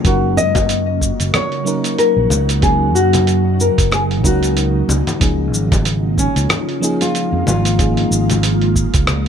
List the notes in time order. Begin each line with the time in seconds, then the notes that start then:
Already playing: C#3 A#3
0.03 F#1 F#3 A#3 C#4 D#4 F#4 A#4, kick, open hi-hat, cabasa
0.37 F#2 D#5, cabasa
0.55 kick, open hi-hat, high conga, cabasa
0.69 open hi-hat, cabasa
1.01 kick, cabasa
1.20 F#1, open hi-hat, cabasa
1.34 C#5, cross-stick, open hi-hat, high conga, low conga, cabasa
1.52 open hi-hat
1.64 F#3 A#3 C#4 D#4 A#4, cabasa
1.84 open hi-hat, cabasa
1.98 A#4, open hi-hat, cabasa
2.17 A#1
2.30 C#2, high conga, cabasa
2.49 open hi-hat, cabasa
2.61 F#3 A#3 C#4 D#4 G#4 A#4, kick, open hi-hat, cabasa
2.95 F#2 F#4, cabasa
3.13 open hi-hat, high conga, cabasa
3.27 open hi-hat, cabasa
3.60 A#4, cabasa
3.78 F#1, kick, open hi-hat, cabasa
3.92 G#4, cross-stick, open hi-hat, high conga, cabasa
4.11 open hi-hat
4.24 C#2 F#3 A#3 C#4 D#4 F#4 A#4, kick, cabasa
4.43 open hi-hat, cabasa
4.57 open hi-hat, cabasa
4.88 C#2 G#3 A#3 F4, high conga, cabasa
5.07 open hi-hat, low conga, cabasa
5.20 C#2 F3 A#3 C#4 D#4 G#4, kick, open hi-hat, cabasa
5.53 G#1, cabasa
5.72 kick, open hi-hat, high conga, cabasa
5.85 open hi-hat, cabasa
6.18 C#4, kick, cabasa
6.36 C#2, open hi-hat, cabasa
6.49 cross-stick, open hi-hat, high conga, low conga, cabasa
6.69 open hi-hat
6.81 F3 A#3 C#4 D#4 G#4, cabasa
7.01 F4, open hi-hat, cabasa
7.15 open hi-hat, cabasa
7.33 F2
7.46 G#1 F4, high conga, cabasa
7.65 open hi-hat, cabasa
7.77 F3 A#3 C#4 D#4 G#4, kick, open hi-hat, cabasa
7.97 open hi-hat
8.11 G#1, cabasa
8.30 open hi-hat, high conga, cabasa
8.43 open hi-hat, cabasa
8.62 open hi-hat
8.76 kick, cabasa
8.94 C#2, kick, open hi-hat, cabasa
9.07 cross-stick, open hi-hat, high conga, cabasa